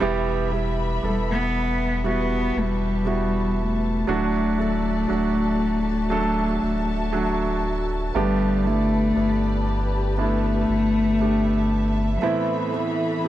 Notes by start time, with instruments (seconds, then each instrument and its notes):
Already playing: string section E5
0.00 sub bass E1, grand piano B2 G3 B3 E4 G4, string section G3 B4 B5
0.51 grand piano G3 B3 E4 G4
1.03 sub bass E1, grand piano G3 B3 E4 A4
1.08 cello G3
1.31 cello B3
2.04 grand piano G3 B3 E4 F#4, cello B3, string section A5
2.56 sub bass E1, cello G3
3.05 grand piano G3 B3 E4 F#4
3.60 cello A3
4.07 sub bass D1, grand piano A2 F#3 A3 D4 F#4, string section F#4 A4 D5
4.58 grand piano F#3 A3 D4 A4
5.08 sub bass D1, grand piano F#3 A3 D4 F#4
6.10 grand piano F#3 A3 D4 A4, string section E5
6.63 sub bass D1
7.13 grand piano F#3 A3 D4 F#4
8.15 sub bass G1, grand piano G2 D3 A3 B3 D4 G4, cello G3, string section G4 B4 D5
8.64 grand piano A3 B3 D4 E4, cello A3
9.16 sub bass G1, grand piano A3 B3 D4 E4
10.18 grand piano A3 B3 D4 E4, cello A3, string section E5
10.69 sub bass G1
11.20 grand piano A3 B3 D4 G4
12.16 cello F#3
12.22 grand piano A2 E3 A3 B3 C4 E4, cello E3, string section A4 B4 B5
12.73 grand piano A3 B3 C4 E4
13.24 grand piano A3 B3